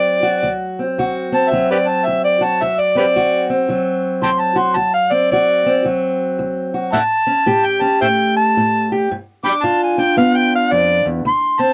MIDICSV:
0, 0, Header, 1, 3, 480
1, 0, Start_track
1, 0, Tempo, 541028
1, 383, Time_signature, 4, 2, 24, 8
1, 10410, End_track
2, 0, Start_track
2, 0, Title_t, "Harmonica"
2, 0, Program_c, 0, 22
2, 0, Note_on_c, 0, 74, 95
2, 522, Note_off_c, 0, 74, 0
2, 1193, Note_on_c, 0, 81, 92
2, 1332, Note_on_c, 0, 76, 84
2, 1345, Note_off_c, 0, 81, 0
2, 1494, Note_off_c, 0, 76, 0
2, 1516, Note_on_c, 0, 67, 59
2, 1516, Note_on_c, 0, 71, 59
2, 1516, Note_on_c, 0, 74, 84
2, 1579, Note_off_c, 0, 67, 0
2, 1579, Note_off_c, 0, 71, 0
2, 1666, Note_on_c, 0, 81, 104
2, 1679, Note_off_c, 0, 74, 0
2, 1822, Note_on_c, 0, 76, 92
2, 1836, Note_off_c, 0, 81, 0
2, 1980, Note_off_c, 0, 76, 0
2, 1989, Note_on_c, 0, 74, 95
2, 2162, Note_on_c, 0, 81, 100
2, 2175, Note_off_c, 0, 74, 0
2, 2335, Note_on_c, 0, 76, 90
2, 2348, Note_off_c, 0, 81, 0
2, 2482, Note_on_c, 0, 74, 82
2, 2495, Note_off_c, 0, 76, 0
2, 2630, Note_off_c, 0, 74, 0
2, 2639, Note_on_c, 0, 67, 68
2, 2639, Note_on_c, 0, 71, 68
2, 2639, Note_on_c, 0, 74, 97
2, 2711, Note_off_c, 0, 67, 0
2, 2715, Note_off_c, 0, 71, 0
2, 3100, Note_off_c, 0, 74, 0
2, 3755, Note_on_c, 0, 79, 64
2, 3755, Note_on_c, 0, 81, 64
2, 3755, Note_on_c, 0, 84, 91
2, 3811, Note_off_c, 0, 81, 0
2, 3821, Note_off_c, 0, 79, 0
2, 3904, Note_on_c, 0, 81, 91
2, 3918, Note_off_c, 0, 84, 0
2, 4063, Note_on_c, 0, 84, 87
2, 4077, Note_off_c, 0, 81, 0
2, 4221, Note_on_c, 0, 81, 93
2, 4235, Note_off_c, 0, 84, 0
2, 4378, Note_off_c, 0, 81, 0
2, 4383, Note_on_c, 0, 77, 93
2, 4548, Note_on_c, 0, 74, 88
2, 4562, Note_off_c, 0, 77, 0
2, 4704, Note_off_c, 0, 74, 0
2, 4717, Note_on_c, 0, 74, 103
2, 5178, Note_off_c, 0, 74, 0
2, 6148, Note_on_c, 0, 76, 85
2, 6148, Note_on_c, 0, 78, 85
2, 6148, Note_on_c, 0, 81, 121
2, 6204, Note_off_c, 0, 76, 0
2, 6225, Note_off_c, 0, 78, 0
2, 6787, Note_on_c, 0, 79, 99
2, 6800, Note_off_c, 0, 81, 0
2, 6928, Note_on_c, 0, 81, 93
2, 6942, Note_off_c, 0, 79, 0
2, 7093, Note_off_c, 0, 81, 0
2, 7107, Note_on_c, 0, 72, 58
2, 7107, Note_on_c, 0, 76, 58
2, 7107, Note_on_c, 0, 79, 83
2, 7161, Note_off_c, 0, 76, 0
2, 7162, Note_off_c, 0, 72, 0
2, 7417, Note_off_c, 0, 79, 0
2, 7424, Note_on_c, 0, 81, 106
2, 7891, Note_off_c, 0, 81, 0
2, 8382, Note_on_c, 0, 79, 71
2, 8382, Note_on_c, 0, 83, 71
2, 8382, Note_on_c, 0, 86, 101
2, 8457, Note_off_c, 0, 79, 0
2, 8458, Note_off_c, 0, 83, 0
2, 8555, Note_on_c, 0, 81, 102
2, 8568, Note_off_c, 0, 86, 0
2, 8706, Note_off_c, 0, 81, 0
2, 8726, Note_on_c, 0, 80, 86
2, 8875, Note_on_c, 0, 79, 95
2, 8888, Note_off_c, 0, 80, 0
2, 9023, Note_off_c, 0, 79, 0
2, 9029, Note_on_c, 0, 77, 95
2, 9194, Note_on_c, 0, 79, 95
2, 9207, Note_off_c, 0, 77, 0
2, 9345, Note_off_c, 0, 79, 0
2, 9362, Note_on_c, 0, 77, 95
2, 9513, Note_on_c, 0, 74, 101
2, 9526, Note_off_c, 0, 77, 0
2, 9797, Note_off_c, 0, 74, 0
2, 9999, Note_on_c, 0, 84, 109
2, 10294, Note_on_c, 0, 81, 96
2, 10307, Note_off_c, 0, 84, 0
2, 10410, Note_off_c, 0, 81, 0
2, 10410, End_track
3, 0, Start_track
3, 0, Title_t, "Steel-string acoustic guitar"
3, 0, Program_c, 1, 25
3, 0, Note_on_c, 1, 38, 75
3, 0, Note_on_c, 1, 54, 59
3, 0, Note_on_c, 1, 60, 58
3, 0, Note_on_c, 1, 66, 69
3, 199, Note_off_c, 1, 66, 0
3, 202, Note_on_c, 1, 66, 66
3, 350, Note_off_c, 1, 38, 0
3, 381, Note_on_c, 1, 38, 70
3, 407, Note_off_c, 1, 60, 0
3, 702, Note_on_c, 1, 60, 58
3, 728, Note_off_c, 1, 66, 0
3, 826, Note_off_c, 1, 38, 0
3, 873, Note_on_c, 1, 38, 83
3, 879, Note_on_c, 1, 66, 74
3, 1170, Note_off_c, 1, 60, 0
3, 1174, Note_on_c, 1, 60, 60
3, 1313, Note_off_c, 1, 38, 0
3, 1348, Note_on_c, 1, 38, 77
3, 1358, Note_off_c, 1, 54, 0
3, 1361, Note_on_c, 1, 54, 59
3, 1791, Note_off_c, 1, 38, 0
3, 1839, Note_on_c, 1, 38, 71
3, 2133, Note_off_c, 1, 66, 0
3, 2136, Note_on_c, 1, 66, 65
3, 2277, Note_off_c, 1, 38, 0
3, 2323, Note_on_c, 1, 38, 76
3, 2349, Note_off_c, 1, 60, 0
3, 2619, Note_on_c, 1, 60, 58
3, 2646, Note_off_c, 1, 66, 0
3, 2759, Note_off_c, 1, 38, 0
3, 2803, Note_on_c, 1, 38, 80
3, 2807, Note_on_c, 1, 66, 72
3, 3100, Note_off_c, 1, 60, 0
3, 3104, Note_on_c, 1, 60, 64
3, 3240, Note_off_c, 1, 38, 0
3, 3270, Note_on_c, 1, 38, 74
3, 3275, Note_off_c, 1, 54, 0
3, 3278, Note_on_c, 1, 54, 63
3, 3713, Note_off_c, 1, 38, 0
3, 3743, Note_on_c, 1, 38, 75
3, 4033, Note_off_c, 1, 66, 0
3, 4044, Note_on_c, 1, 66, 69
3, 4190, Note_off_c, 1, 38, 0
3, 4206, Note_off_c, 1, 66, 0
3, 4216, Note_off_c, 1, 60, 0
3, 4223, Note_on_c, 1, 38, 70
3, 4536, Note_on_c, 1, 60, 57
3, 4670, Note_off_c, 1, 38, 0
3, 4716, Note_on_c, 1, 38, 73
3, 4730, Note_on_c, 1, 66, 72
3, 5011, Note_off_c, 1, 60, 0
3, 5023, Note_on_c, 1, 60, 58
3, 5156, Note_off_c, 1, 38, 0
3, 5184, Note_off_c, 1, 54, 0
3, 5186, Note_on_c, 1, 38, 74
3, 5194, Note_on_c, 1, 54, 60
3, 5630, Note_off_c, 1, 38, 0
3, 5668, Note_on_c, 1, 38, 70
3, 5969, Note_off_c, 1, 66, 0
3, 5980, Note_on_c, 1, 66, 65
3, 6111, Note_off_c, 1, 38, 0
3, 6134, Note_off_c, 1, 66, 0
3, 6135, Note_off_c, 1, 60, 0
3, 6147, Note_on_c, 1, 45, 75
3, 6151, Note_off_c, 1, 54, 0
3, 6447, Note_on_c, 1, 61, 56
3, 6591, Note_off_c, 1, 45, 0
3, 6621, Note_on_c, 1, 45, 80
3, 6626, Note_on_c, 1, 67, 75
3, 6921, Note_off_c, 1, 61, 0
3, 6932, Note_on_c, 1, 61, 62
3, 7067, Note_off_c, 1, 45, 0
3, 7115, Note_on_c, 1, 45, 75
3, 7118, Note_on_c, 1, 57, 61
3, 7555, Note_off_c, 1, 45, 0
3, 7605, Note_on_c, 1, 45, 72
3, 7883, Note_off_c, 1, 67, 0
3, 7914, Note_on_c, 1, 67, 67
3, 8039, Note_off_c, 1, 45, 0
3, 8048, Note_off_c, 1, 61, 0
3, 8049, Note_off_c, 1, 57, 0
3, 8060, Note_off_c, 1, 67, 0
3, 8085, Note_on_c, 1, 43, 76
3, 8370, Note_on_c, 1, 62, 57
3, 8519, Note_off_c, 1, 43, 0
3, 8547, Note_on_c, 1, 43, 79
3, 8551, Note_on_c, 1, 65, 77
3, 8850, Note_off_c, 1, 62, 0
3, 8854, Note_on_c, 1, 62, 63
3, 8990, Note_off_c, 1, 43, 0
3, 9018, Note_on_c, 1, 43, 76
3, 9024, Note_on_c, 1, 59, 60
3, 9465, Note_off_c, 1, 43, 0
3, 9510, Note_on_c, 1, 41, 68
3, 9805, Note_off_c, 1, 41, 0
3, 9809, Note_on_c, 1, 40, 67
3, 9962, Note_off_c, 1, 59, 0
3, 9966, Note_off_c, 1, 65, 0
3, 9968, Note_off_c, 1, 62, 0
3, 9978, Note_off_c, 1, 40, 0
3, 9982, Note_on_c, 1, 38, 80
3, 10285, Note_on_c, 1, 60, 59
3, 10410, Note_off_c, 1, 38, 0
3, 10410, Note_off_c, 1, 60, 0
3, 10410, End_track
0, 0, End_of_file